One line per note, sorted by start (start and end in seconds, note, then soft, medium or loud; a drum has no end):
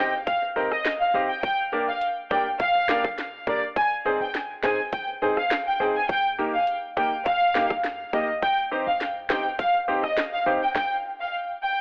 0.00 0.29 D#2 medium
0.00 0.10 C4 medium
0.00 0.10 D#4 medium
0.00 0.10 G4 medium
0.00 0.13 G4 medium
0.00 0.13 C5 medium
0.00 0.14 D#5 loud
0.00 0.10 G5 medium
0.27 0.51 C2 loud
0.27 0.39 F5 medium
0.27 kick medium
0.27 closed hi-hat medium
0.42 muted nylon-string guitar stroke soft
0.56 0.68 C4 medium
0.56 0.68 D#4 medium
0.56 0.71 G4 medium
0.56 0.68 A#4 medium
0.56 0.72 C5 medium
0.56 0.72 D#5 medium
0.72 0.82 D#5 medium
0.72 cross-stick medium
0.85 snare loud
0.85 closed hi-hat medium
1.00 1.11 F5 medium
1.14 1.27 C2 loud
1.14 1.27 C4 medium
1.14 1.27 D#4 medium
1.14 1.30 G4 medium
1.14 1.27 G4 medium
1.14 1.30 C5 medium
1.14 1.30 D#5 loud
1.29 1.40 G5 medium
1.43 1.91 G1 loud
1.43 1.55 G5 loud
1.43 kick loud
1.43 closed hi-hat medium
1.72 1.85 A#3 medium
1.72 1.85 D4 medium
1.72 1.88 G4 medium
1.72 1.85 G4 medium
1.72 1.88 A#4 medium
1.72 1.88 D5 medium
1.88 1.99 F5 medium
2.01 closed hi-hat medium
2.30 2.55 D2 medium
2.30 2.43 A#3 medium
2.30 2.43 D4 medium
2.30 2.46 G4 medium
2.30 2.43 G4 medium
2.30 2.46 A#4 medium
2.30 2.47 D5 medium
2.30 2.43 G5 medium
2.30 kick medium
2.60 2.96 G1 loud
2.60 3.02 F5 loud
2.60 kick loud
2.60 closed hi-hat medium
2.75 muted nylon-string guitar stroke medium
2.88 3.01 A#3 medium
2.88 3.01 D4 medium
2.88 3.04 G4 medium
2.88 3.01 G4 medium
2.88 3.05 A#4 loud
2.88 3.05 D5 medium
2.88 snare loud
3.04 3.39 G1 medium
3.04 kick medium
3.04 cross-stick medium
3.18 snare medium
3.18 closed hi-hat medium
3.47 3.71 G1 loud
3.47 3.60 A#3 medium
3.47 3.60 D4 medium
3.47 3.63 G4 medium
3.47 3.63 A#4 medium
3.47 3.60 A#4 medium
3.47 3.59 D5 medium
3.47 3.63 D5 medium
3.47 kick medium
3.76 4.00 G#1 loud
3.76 3.89 G#5 loud
3.76 kick loud
3.76 closed hi-hat medium
4.05 4.18 C4 medium
4.05 4.21 D#4 medium
4.05 4.18 D#4 medium
4.05 4.21 G#4 medium
4.05 4.18 G#4 medium
4.05 4.21 C5 medium
4.21 4.55 G#1 medium
4.21 4.32 G5 medium
4.34 snare medium
4.34 closed hi-hat medium
4.63 4.88 C2 medium
4.63 4.76 C4 medium
4.63 4.79 D#4 medium
4.63 4.76 D#4 medium
4.63 4.79 G#4 medium
4.63 4.76 G#4 medium
4.63 4.80 C5 medium
4.63 4.76 G#5 medium
4.63 kick medium
4.63 snare loud
4.93 5.16 G#1 loud
4.93 5.05 G5 medium
4.93 kick medium
4.93 closed hi-hat medium
5.08 muted nylon-string guitar stroke soft
5.22 5.34 C4 medium
5.22 5.37 D#4 medium
5.22 5.34 D#4 medium
5.22 5.34 G#4 medium
5.22 5.38 G#4 medium
5.22 5.38 C5 loud
5.37 5.48 F5 medium
5.37 cross-stick medium
5.51 snare loud
5.51 closed hi-hat medium
5.67 5.77 G5 medium
5.80 5.93 G#1 medium
5.80 5.92 C4 medium
5.80 5.96 D#4 medium
5.80 5.92 D#4 medium
5.80 5.93 G#4 medium
5.80 5.96 G#4 medium
5.80 5.96 C5 medium
5.95 6.06 G#5 medium
6.09 6.57 D#2 loud
6.09 6.22 G5 loud
6.09 kick loud
6.09 closed hi-hat medium
6.38 6.54 A#3 medium
6.38 6.51 A#3 medium
6.38 6.51 D#4 medium
6.38 6.54 D#4 medium
6.38 6.51 G4 medium
6.38 6.54 G4 loud
6.54 6.65 F5 medium
6.67 closed hi-hat medium
6.97 7.27 A#1 medium
6.97 7.12 A#3 medium
6.97 7.09 A#3 medium
6.97 7.09 D#4 medium
6.97 7.13 D#4 loud
6.97 7.09 G4 medium
6.97 7.13 G4 loud
6.97 7.09 G5 medium
6.97 kick medium
7.26 7.62 D#2 loud
7.26 7.68 F5 loud
7.26 kick loud
7.26 closed hi-hat medium
7.41 muted nylon-string guitar stroke soft
7.55 7.67 A#3 medium
7.55 7.71 A#3 medium
7.55 7.67 D#4 medium
7.55 7.71 D#4 medium
7.55 7.67 G4 medium
7.55 7.71 G4 loud
7.55 snare loud
7.70 8.05 D2 medium
7.70 kick medium
7.70 cross-stick medium
7.84 snare medium
7.84 closed hi-hat medium
8.13 8.37 D2 medium
8.13 8.29 A#3 medium
8.13 8.26 A#3 medium
8.13 8.26 D#4 medium
8.13 8.29 D#4 loud
8.13 8.26 G4 medium
8.13 8.29 G4 loud
8.13 8.25 D#5 medium
8.13 kick loud
8.42 8.66 C2 loud
8.42 8.55 G5 loud
8.42 kick loud
8.42 closed hi-hat medium
8.71 8.84 C4 medium
8.71 8.87 D#4 medium
8.71 8.84 D#4 medium
8.71 8.84 G4 medium
8.71 8.87 G4 medium
8.71 8.88 C5 medium
8.87 9.32 C2 medium
8.87 8.98 F5 medium
9.01 snare medium
9.01 closed hi-hat medium
9.30 9.61 D#2 medium
9.30 9.42 C4 medium
9.30 9.45 D#4 medium
9.30 9.42 D#4 medium
9.30 9.42 G4 medium
9.30 9.46 G4 medium
9.30 9.46 C5 loud
9.30 9.42 G5 medium
9.30 kick medium
9.30 snare loud
9.59 9.83 C2 loud
9.59 9.71 F5 medium
9.59 kick loud
9.59 closed hi-hat medium
9.74 muted nylon-string guitar stroke soft
9.88 10.00 C4 medium
9.88 10.00 D#4 medium
9.88 10.03 D#4 medium
9.88 10.00 G4 medium
9.88 10.04 G4 medium
9.88 10.04 C5 medium
10.04 10.14 D#5 medium
10.04 cross-stick medium
10.17 snare loud
10.17 closed hi-hat medium
10.33 10.43 F5 medium
10.46 10.59 C2 medium
10.46 10.59 C4 medium
10.46 10.58 D#4 medium
10.46 10.62 D#4 medium
10.46 10.59 G4 medium
10.46 10.62 G4 medium
10.46 10.62 C5 loud
10.62 10.72 G5 medium
10.75 10.88 G5 loud
10.75 kick loud
10.75 snare medium
11.20 11.31 F5 medium
11.63 11.75 G5 medium